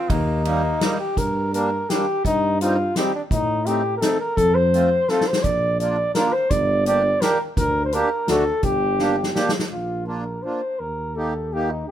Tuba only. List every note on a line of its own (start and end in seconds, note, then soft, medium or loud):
0.10 0.79 D#2 medium
1.17 1.86 G2 medium
2.24 2.93 G2 medium
3.31 4.00 A2 medium
4.37 5.07 F2 loud
5.44 6.13 A#1 medium
6.50 7.20 G1 loud
7.57 8.03 D2 loud
8.27 8.51 D2 medium
8.63 9.33 G1 medium
9.72 10.42 A#1 medium
10.80 11.91 D#2 medium